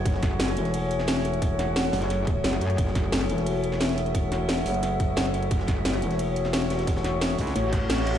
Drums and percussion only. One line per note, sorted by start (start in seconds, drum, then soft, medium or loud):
0.05 kick loud
0.05 closed hi-hat medium
0.14 snare soft
0.23 kick loud
0.23 snare medium
0.23 closed hi-hat medium
0.39 snare loud
0.39 closed hi-hat medium
0.48 closed hi-hat soft
0.57 closed hi-hat medium
0.65 snare soft
0.65 closed hi-hat soft
0.74 closed hi-hat medium
0.74 open hi-hat medium
0.91 closed hi-hat medium
0.99 snare medium
0.99 snare soft
1.07 snare loud
1.07 closed hi-hat medium
1.16 snare soft
1.16 closed hi-hat soft
1.24 closed hi-hat medium
1.33 closed hi-hat soft
1.42 kick loud
1.42 closed hi-hat medium
1.42 closed hi-hat loud
1.59 snare medium
1.59 closed hi-hat medium
1.76 snare loud
1.76 closed hi-hat medium
1.84 closed hi-hat soft
1.93 snare loud
1.93 closed hi-hat medium
1.93 open hi-hat medium
2.01 snare loud
2.01 closed hi-hat medium
2.01 closed hi-hat soft
2.10 snare soft
2.10 closed hi-hat medium
2.27 kick loud
2.27 closed hi-hat medium
2.44 snare loud
2.44 closed hi-hat medium
2.53 snare soft
2.53 closed hi-hat soft
2.61 closed hi-hat medium
2.70 closed hi-hat soft
2.78 kick loud
2.78 closed hi-hat medium
2.87 snare soft
2.95 kick loud
2.95 snare medium
2.95 closed hi-hat medium
3.12 snare loud
3.12 closed hi-hat medium
3.21 closed hi-hat soft
3.29 closed hi-hat medium
3.38 snare soft
3.38 closed hi-hat soft
3.46 closed hi-hat medium
3.46 open hi-hat medium
3.63 closed hi-hat medium
3.72 snare medium
3.72 snare soft
3.80 snare loud
3.80 closed hi-hat medium
3.89 snare soft
3.89 closed hi-hat soft
3.98 closed hi-hat medium
4.06 closed hi-hat soft
4.15 kick loud
4.15 closed hi-hat medium
4.32 snare medium
4.32 closed hi-hat medium
4.48 snare loud
4.48 closed hi-hat medium
4.57 closed hi-hat soft
4.66 closed hi-hat medium
4.66 open hi-hat medium
4.74 closed hi-hat soft
4.83 snare soft
4.83 closed hi-hat loud
4.83 closed hi-hat medium
5.00 kick loud
5.00 closed hi-hat medium
5.16 snare loud
5.16 closed hi-hat medium
5.25 snare soft
5.25 closed hi-hat soft
5.34 closed hi-hat medium
5.42 closed hi-hat soft
5.51 kick loud
5.51 closed hi-hat medium
5.60 snare medium
5.67 kick loud
5.67 snare medium
5.67 closed hi-hat medium
5.85 snare loud
5.85 closed hi-hat loud
5.85 closed hi-hat medium
5.94 closed hi-hat soft
6.02 closed hi-hat medium
6.11 snare soft
6.11 closed hi-hat soft
6.19 closed hi-hat medium
6.19 open hi-hat medium
6.36 closed hi-hat medium
6.44 snare medium
6.44 snare soft
6.53 snare loud
6.53 closed hi-hat medium
6.62 snare soft
6.62 closed hi-hat soft
6.70 snare loud
6.70 closed hi-hat medium
6.78 snare medium
6.78 closed hi-hat medium
6.78 closed hi-hat soft
6.87 kick loud
6.87 snare loud
6.87 closed hi-hat loud
6.87 closed hi-hat medium
6.96 snare loud
6.96 closed hi-hat medium
7.04 snare medium
7.04 closed hi-hat medium
7.21 snare loud
7.21 closed hi-hat medium
7.21 closed hi-hat loud
7.30 closed hi-hat soft
7.38 kick medium
7.38 open hi-hat medium
7.47 snare soft
7.47 closed hi-hat soft
7.56 snare soft
7.56 closed hi-hat medium
7.56 closed hi-hat loud
7.73 kick loud
7.73 closed hi-hat medium
7.89 snare loud
7.89 closed hi-hat medium
7.89 closed hi-hat loud
7.98 snare soft
7.98 closed hi-hat soft
8.07 closed hi-hat medium